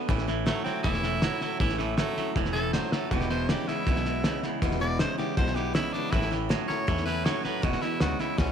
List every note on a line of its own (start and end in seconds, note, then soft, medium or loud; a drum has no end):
0.08 0.49 A1 medium
0.08 0.28 A2 medium
0.08 0.26 A2 medium
0.08 0.28 E3 loud
0.08 0.27 E3 loud
0.08 0.28 A3 medium
0.08 0.28 C#4 loud
0.08 0.26 E4 medium
0.08 kick loud
0.08 snare soft
0.18 snare soft
0.28 0.45 A2 medium
0.28 0.45 E3 medium
0.28 0.46 A3 soft
0.28 0.46 C#4 medium
0.28 0.47 E4 medium
0.28 snare soft
0.46 0.64 A2 medium
0.46 0.65 E3 medium
0.46 0.64 F#3 medium
0.46 0.64 A3 loud
0.46 0.64 E4 medium
0.46 snare loud
0.46 hi-hat pedal medium
0.64 0.83 A2 medium
0.64 0.83 F#3 medium
0.64 0.83 A3 soft
0.64 0.82 C4 loud
0.64 0.84 C#4 medium
0.64 0.84 E4 medium
0.64 muted upright bass stroke medium
0.64 snare soft
0.83 1.24 E1 medium
0.83 1.03 A2 medium
0.83 1.02 A2 medium
0.83 1.03 E3 medium
0.83 1.02 E3 medium
0.83 1.04 A3 medium
0.83 1.03 C#4 medium
0.83 1.57 E4 loud
0.83 1.02 E4 medium
0.83 kick loud
0.83 snare soft
0.94 snare soft
1.03 1.21 A2 medium
1.03 1.21 E3 medium
1.03 1.22 A3 soft
1.03 1.23 C#4 soft
1.03 1.22 E4 medium
1.03 snare soft
1.22 1.40 A2 medium
1.22 1.41 E3 medium
1.22 1.40 F#3 medium
1.22 1.42 A3 medium
1.22 1.41 C#4 medium
1.22 snare loud
1.22 hi-hat pedal medium
1.41 1.59 A2 medium
1.41 1.59 F#3 medium
1.41 1.60 A3 soft
1.41 1.60 C#4 medium
1.41 1.60 E4 medium
1.41 muted upright bass stroke medium
1.41 snare soft
1.60 2.00 A1 medium
1.60 1.77 A2 medium
1.60 1.79 A2 medium
1.60 1.79 E3 medium
1.60 1.78 E3 medium
1.60 1.80 A3 medium
1.60 1.79 C#4 medium
1.60 1.77 E4 loud
1.60 1.77 E4 medium
1.60 kick loud
1.60 snare soft
1.69 snare soft
1.78 1.96 A2 medium
1.78 1.97 E3 medium
1.78 1.96 A3 medium
1.78 1.98 A3 soft
1.78 1.99 C#4 medium
1.78 1.98 E4 soft
1.78 snare soft
1.97 2.15 A2 medium
1.97 2.17 E3 medium
1.97 2.16 F#3 medium
1.97 2.34 A3 loud
1.97 2.18 A3 medium
1.97 2.17 C#4 medium
1.97 2.16 E4 medium
1.97 snare loud
1.97 hi-hat pedal medium
2.17 2.34 A2 medium
2.17 2.34 F#3 medium
2.17 2.36 A3 soft
2.17 2.36 C#4 soft
2.17 2.36 E4 medium
2.17 muted upright bass stroke medium
2.17 snare soft
2.36 2.75 E1 medium
2.36 2.55 A2 medium
2.36 2.53 A2 medium
2.36 2.55 E3 medium
2.36 2.53 E3 medium
2.36 2.55 A3 medium
2.36 2.55 C#4 medium
2.36 2.54 E4 medium
2.36 kick loud
2.36 snare soft
2.45 snare soft
2.53 2.72 A2 medium
2.53 2.72 E3 medium
2.53 2.74 C#4 medium
2.53 2.74 E4 medium
2.53 2.72 A4 loud
2.53 snare soft
2.57 2.73 A3 soft
2.73 2.91 A2 medium
2.73 2.92 E3 medium
2.73 2.91 F#3 medium
2.73 2.93 A3 medium
2.73 2.93 C#4 medium
2.73 2.91 E4 medium
2.73 2.94 C5 medium
2.73 snare medium
2.73 hi-hat pedal medium
2.92 3.10 A2 medium
2.92 3.10 F#3 medium
2.92 3.12 A3 soft
2.92 3.12 C#4 soft
2.92 3.11 E4 soft
2.92 3.11 A4 medium
2.92 muted upright bass stroke medium
2.92 snare medium
3.11 3.51 E1 medium
3.11 3.30 E2 medium
3.11 3.28 E2 medium
3.11 3.31 B2 medium
3.11 3.29 B2 loud
3.11 3.31 E3 medium
3.11 3.31 G#3 medium
3.11 3.30 B3 medium
3.11 3.29 E4 medium
3.11 3.30 G4 loud
3.11 kick loud
3.11 snare soft
3.21 snare soft
3.30 3.47 E2 medium
3.30 3.47 B2 medium
3.30 3.48 E3 medium
3.30 3.49 G#3 soft
3.30 3.50 B3 medium
3.30 3.49 E4 medium
3.30 3.51 C5 loud
3.30 snare soft
3.49 3.66 E2 medium
3.49 3.66 C#3 medium
3.49 3.68 E3 medium
3.49 3.68 G#3 medium
3.49 3.68 B3 medium
3.49 3.67 E4 medium
3.49 3.70 G4 loud
3.49 snare loud
3.49 hi-hat pedal medium
3.68 3.85 E2 medium
3.68 3.85 C#3 medium
3.68 3.87 E3 soft
3.68 3.87 G#3 soft
3.68 3.88 B3 medium
3.68 4.41 E4 loud
3.68 3.87 E4 medium
3.68 muted upright bass stroke medium
3.68 snare soft
3.86 4.26 B1 medium
3.86 4.04 E2 medium
3.86 4.06 E2 medium
3.86 4.04 B2 loud
3.86 4.06 B2 medium
3.86 4.06 E3 medium
3.86 4.06 G#3 medium
3.86 4.06 B3 medium
3.86 4.05 E4 medium
3.86 kick loud
3.86 snare soft
3.96 snare soft
4.05 4.23 E2 medium
4.05 4.23 B2 medium
4.05 4.23 E3 soft
4.05 4.24 G#3 medium
4.05 4.25 B3 soft
4.05 4.25 E4 medium
4.05 snare soft
4.24 4.41 E2 medium
4.24 4.42 C#3 loud
4.24 4.43 E3 medium
4.24 4.44 G#3 medium
4.24 4.43 B3 medium
4.24 4.42 E4 medium
4.24 snare loud
4.24 hi-hat pedal medium
4.43 4.60 E2 medium
4.43 4.61 C#3 medium
4.43 4.61 E3 soft
4.43 4.62 G#3 medium
4.43 4.62 B3 medium
4.43 4.62 E4 medium
4.43 muted upright bass stroke medium
4.43 snare soft
4.62 5.02 E1 medium
4.62 4.79 E2 medium
4.62 4.81 E2 medium
4.62 4.79 B2 loud
4.62 4.81 B2 medium
4.62 4.81 E3 medium
4.62 4.80 G#3 medium
4.62 4.80 B3 medium
4.62 4.79 E4 loud
4.62 kick loud
4.62 snare soft
4.71 snare soft
4.80 4.98 E2 medium
4.80 4.98 B2 medium
4.80 4.98 E3 soft
4.80 4.99 G#3 medium
4.80 5.00 B3 medium
4.80 4.99 E4 medium
4.80 4.99 D5 loud
4.80 snare soft
4.99 5.17 E2 medium
4.99 5.17 C#3 medium
4.99 5.18 E3 medium
4.99 5.18 G#3 medium
4.99 5.17 B3 medium
4.99 5.16 E4 medium
4.99 5.17 C5 loud
4.99 snare loud
4.99 hi-hat pedal medium
5.17 5.35 E2 medium
5.17 5.36 C#3 medium
5.17 5.36 E3 soft
5.17 5.37 G#3 medium
5.17 5.37 B3 medium
5.17 5.37 E4 medium
5.17 5.37 G4 medium
5.17 muted upright bass stroke medium
5.17 snare soft
5.37 5.77 B1 medium
5.37 5.56 E2 medium
5.37 5.54 E2 medium
5.37 5.56 B2 medium
5.37 5.54 B2 medium
5.37 5.56 E3 medium
5.37 5.55 G#3 medium
5.37 5.55 B3 medium
5.37 5.54 E4 medium
5.37 5.57 C5 loud
5.37 kick loud
5.37 snare soft
5.47 snare soft
5.55 5.73 E2 medium
5.55 5.73 B2 medium
5.55 5.73 E3 soft
5.55 5.73 G#3 medium
5.55 5.74 B3 medium
5.55 5.74 E4 medium
5.55 5.74 G4 loud
5.55 snare soft
5.74 5.92 E2 medium
5.74 5.92 C#3 medium
5.74 5.93 E3 medium
5.74 5.94 G#3 medium
5.74 5.93 B3 medium
5.74 5.95 E4 loud
5.74 5.92 E4 medium
5.74 snare loud
5.74 hi-hat pedal loud
5.93 6.11 E2 medium
5.93 6.11 C#3 medium
5.93 6.11 E3 soft
5.93 6.12 G#3 soft
5.93 6.13 B3 medium
5.93 6.13 D4 loud
5.93 6.12 E4 soft
5.93 muted upright bass stroke medium
5.93 snare soft
6.11 6.52 A1 medium
6.11 6.31 A2 medium
6.11 6.29 A2 medium
6.11 6.31 E3 medium
6.11 6.30 E3 medium
6.11 6.32 A3 medium
6.11 6.31 C#4 medium
6.11 6.30 E4 loud
6.11 6.29 E4 medium
6.11 kick loud
6.11 snare soft
6.22 snare soft
6.30 6.48 A2 medium
6.30 6.49 E3 medium
6.30 6.49 A3 soft
6.30 6.50 C#4 medium
6.30 6.50 E4 medium
6.30 snare soft
6.49 6.67 A2 medium
6.49 6.69 E3 medium
6.49 6.67 F#3 medium
6.49 6.69 A3 medium
6.49 6.68 C#4 medium
6.49 6.67 E4 medium
6.49 snare loud
6.49 hi-hat pedal medium
6.68 6.86 A2 medium
6.68 6.86 F#3 medium
6.68 6.86 A3 medium
6.68 6.87 C#4 medium
6.68 6.87 E4 medium
6.68 7.05 C#5 loud
6.68 muted upright bass stroke medium
6.68 snare soft
6.87 7.28 E2 medium
6.87 7.06 A2 medium
6.87 7.05 A2 medium
6.87 7.06 E3 medium
6.87 7.05 E3 medium
6.87 7.07 A3 medium
6.87 7.05 C#4 medium
6.87 7.04 E4 medium
6.87 kick loud
6.87 snare soft
6.97 snare soft
7.06 7.23 A2 medium
7.06 7.24 E3 medium
7.06 7.24 A3 soft
7.06 7.25 C#4 soft
7.06 7.25 E4 medium
7.06 7.26 B4 loud
7.06 snare soft
7.24 7.42 A2 loud
7.24 7.44 E3 medium
7.24 7.43 F#3 loud
7.24 7.44 A3 medium
7.24 7.44 C#4 medium
7.24 7.42 E4 medium
7.24 7.45 C#5 loud
7.24 snare loud
7.24 hi-hat pedal medium
7.43 7.61 A2 medium
7.43 7.62 F#3 medium
7.43 7.63 A3 soft
7.43 7.63 C#4 soft
7.43 7.63 E4 soft
7.43 7.64 B4 medium
7.43 muted upright bass stroke medium
7.43 snare soft
7.62 7.76 E1 loud
7.62 7.81 E2 medium
7.62 7.80 E2 medium
7.62 7.82 B2 medium
7.62 7.80 B2 loud
7.62 7.82 E3 medium
7.62 7.82 G#3 medium
7.62 7.81 B3 medium
7.62 7.80 E4 medium
7.62 7.83 F#4 loud
7.62 kick loud
7.62 snare soft
7.73 snare soft
7.81 7.99 E2 medium
7.81 7.99 B2 medium
7.81 7.99 E3 medium
7.81 8.00 G#3 soft
7.81 8.01 B3 medium
7.81 8.00 E4 medium
7.81 8.00 E4 loud
7.81 muted upright bass stroke medium
7.81 snare soft
8.00 8.17 D2 medium
8.00 8.18 E2 medium
8.00 8.18 C#3 medium
8.00 8.20 E3 medium
8.00 8.20 G#3 medium
8.00 8.19 B3 medium
8.00 8.18 E4 medium
8.00 8.22 F#4 loud
8.00 snare loud
8.00 hi-hat pedal medium
8.19 8.36 E2 medium
8.19 8.37 C#3 medium
8.19 8.37 E3 medium
8.19 8.38 G#3 soft
8.19 8.38 B3 medium
8.19 8.38 E4 medium
8.19 8.40 E4 medium
8.19 snare soft
8.38 8.52 C#2 medium
8.38 8.52 E2 medium
8.38 8.52 B2 medium
8.38 8.52 E3 medium
8.38 8.52 G#3 medium
8.38 8.52 B3 medium
8.38 8.52 C#4 loud
8.38 8.52 E4 medium
8.38 kick loud
8.38 snare medium